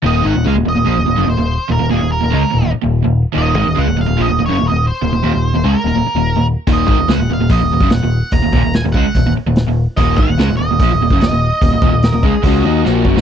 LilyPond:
<<
  \new Staff \with { instrumentName = "Lead electric guitar" } { \time 4/4 \key ees \dorian \tempo 4 = 145 ees''8 ges''8 f''8 ees''4. c''4 | bes'8 aes'8 bes'4. r4. | ees''4 ges''8 f''8 ees''8 des''8 ees''8 c''8~ | c''4. bes'2 r8 |
ees''4 ges''8 f''8 ees''4 ges''4 | bes''4 aes''8 ges''4 r4. | ees''8 ges''4 ees''2~ ees''8~ | ees''2. r4 | }
  \new Staff \with { instrumentName = "Overdriven electric guitar" } { \time 4/4 \key ees \dorian r1 | r1 | r1 | r1 |
r1 | r1 | r2. ees''4~ | ees''4 bes'8 aes'8 ges'4.~ ges'16 r16 | }
  \new Staff \with { instrumentName = "Overdriven electric guitar" } { \clef bass \time 4/4 \key ees \dorian <ees, bes, ees>8 <aes, ees>16 <ees, bes,>16 <des aes>16 <ees, bes,>16 <ees, bes,>16 <ees, bes,>16 <bes, f>16 <ees, bes,>16 <ees, bes,>16 <ges, des>16 <ees, bes,>16 <ees, bes,>8 r16 | <ees, bes,>16 <ees, bes,>16 <ees, bes,>16 <ees, bes,>8 <ees, bes,>16 <des aes>16 r16 <ees, bes,>16 <ees, bes,>16 r16 <ees, bes,>8 <ees, bes,>8 r16 | <ees, bes, ees>8 <aes, ees>16 <ees, bes,>16 <des aes>16 <ees, bes,>16 <ees, bes,>16 <ees, bes,>16 <bes, f>16 <ees, bes,>16 <ees, bes,>16 <ges, des>16 <ees, bes,>16 <ees, bes,>8 r16 | <ees, bes,>16 <ees, bes,>16 <ees, bes,>16 <ees, bes,>8 <ees, bes,>16 <des aes>16 r16 <ees, bes,>16 <ees, bes,>16 r16 <ees, bes,>8 <ees, bes,>8 r16 |
<ees, bes, ees>8 <aes, ees>16 <ees, bes,>16 <des aes>16 <ees, bes,>16 <ees, bes,>16 <ees, bes,>16 <bes, f>16 <ees, bes,>16 <ees, bes,>16 <ges, des>16 <ees, bes,>16 <ees, bes,>8 r16 | <ees, bes,>16 <ees, bes,>16 <ees, bes,>16 <ees, bes,>8 <ees, bes,>16 <des aes>16 r16 <ees, bes,>16 <ees, bes,>16 r16 <ees, bes,>8 <ees, bes,>8 r16 | <ees, bes, ees>8 <aes, ees>16 <ees, bes,>16 <des aes>16 <ees, bes,>16 <ees, bes,>16 <ees, bes,>16 <bes, f>16 <ees, bes,>16 <ees, bes,>16 <ges, des>16 <ees, bes,>16 <ees, bes,>8 r16 | <ees, bes,>16 <ees, bes,>16 <ees, bes,>16 <ees, bes,>8 <ees, bes,>16 <des aes>16 r16 <des aes des'>8 <ees bes ees'>8 <bes, f bes>8 <ges, des>16 <aes, ees>16 | }
  \new Staff \with { instrumentName = "Overdriven electric guitar" } { \clef bass \time 4/4 \key ees \dorian <ees, bes, ees>8 <aes, ees>16 <ees, bes,>16 <des aes>16 <ees, bes,>16 <ees, bes,>16 <ees, bes,>16 <bes, f>16 <ees, bes,>16 <ees, bes,>16 <ges, des>16 <ees, bes,>16 <ees, bes,>8 r16 | <ees, bes,>16 <ees, bes,>16 <ees, bes,>16 <ees, bes,>8 <ees, bes,>16 <des aes>16 r16 <ees, bes,>16 <ees, bes,>16 r16 <ees, bes,>8 <ees, bes,>8 r16 | <ees, bes, ees>8 <aes, ees>16 <ees, bes,>16 <des aes>16 <ees, bes,>16 <ees, bes,>16 <ees, bes,>16 <bes, f>16 <ees, bes,>16 <ees, bes,>16 <ges, des>16 <ees, bes,>16 <ees, bes,>8 r16 | <ees, bes,>16 <ees, bes,>16 <ees, bes,>16 <ees, bes,>8 <ees, bes,>16 <des aes>16 r16 <ees, bes,>16 <ees, bes,>16 r16 <ees, bes,>8 <ees, bes,>8 r16 |
<ees, bes, ees>8 <aes, ees>16 <ees, bes,>16 <des aes>16 <ees, bes,>16 <ees, bes,>16 <ees, bes,>16 <bes, f>16 <ees, bes,>16 <ees, bes,>16 <ges, des>16 <ees, bes,>16 <ees, bes,>8 r16 | <ees, bes,>16 <ees, bes,>16 <ees, bes,>16 <ees, bes,>8 <ees, bes,>16 <des aes>16 r16 <ees, bes,>16 <ees, bes,>16 r16 <ees, bes,>8 <ees, bes,>8 r16 | <ees, bes, ees>8 <aes, ees>16 <ees, bes,>16 <des aes>16 <ees, bes,>16 <ees, bes,>16 <ees, bes,>16 <bes, f>16 <ees, bes,>16 <ees, bes,>16 <ges, des>16 <ees, bes,>16 <ees, bes,>8 r16 | <ees, bes,>16 <ees, bes,>16 <ees, bes,>16 <ees, bes,>8 <ees, bes,>16 <des aes>16 r16 <des aes des'>8 <ees bes ees'>8 <bes, f bes>8 <ges, des>16 <aes, ees>16 | }
  \new Staff \with { instrumentName = "Picked electric bass" } { \clef bass \time 4/4 \key ees \dorian ees,,8 aes,,16 ees,,16 des,16 ees,,16 ees,,16 ees,,16 bes,,16 ees,,16 ees,,16 ges,,16 ees,,16 ees,,8 r16 | ees,,16 ees,,16 ees,,16 ees,,8 ees,,16 des,16 r16 ees,,16 ees,,16 r16 ees,,8 ees,,8 r16 | ees,,8 aes,,16 ees,,16 des,16 ees,,16 ees,,16 ees,,16 bes,,16 ees,,16 ees,,16 ges,,16 ees,,16 ees,,8 r16 | ees,,16 ees,,16 ees,,16 ees,,8 ees,,16 des,16 r16 ees,,16 ees,,16 r16 ees,,8 ees,,8 r16 |
ees,,8 aes,,16 ees,,16 des,16 ees,,16 ees,,16 ees,,16 bes,,16 ees,,16 ees,,16 ges,,16 ees,,16 ees,,8 r16 | ees,,16 ees,,16 ees,,16 ees,,8 ees,,16 des,16 r16 ees,,16 ees,,16 r16 ees,,8 ees,,8 r16 | ees,,8 aes,,16 ees,,16 des,16 ees,,16 ees,,16 ees,,16 bes,,16 ees,,16 ees,,16 ges,,16 ees,,16 ees,,8 r16 | ees,,16 ees,,16 ees,,16 ees,,8 ees,,16 des,16 r16 des,8 ees,8 bes,,8 ges,,16 aes,,16 | }
  \new DrumStaff \with { instrumentName = "Drums" } \drummode { \time 4/4 r4 r4 r4 r4 | r4 r4 r4 r4 | r4 r4 r4 r4 | r4 r4 r4 r4 |
<hho bd>8 bd8 <hho sn>4 <hho bd>8. bd16 <hho sn>4 | <hho bd>8 bd8 <hho sn>8 bd8 <hho bd>4 <hho sn>4 | <hho bd>8 bd8 <hho sn>4 <hho bd>8. bd16 <hho sn>4 | <hho bd>8 bd8 <hho sn>8 bd8 <hho bd>4 sn8 bd16 sn16 | }
>>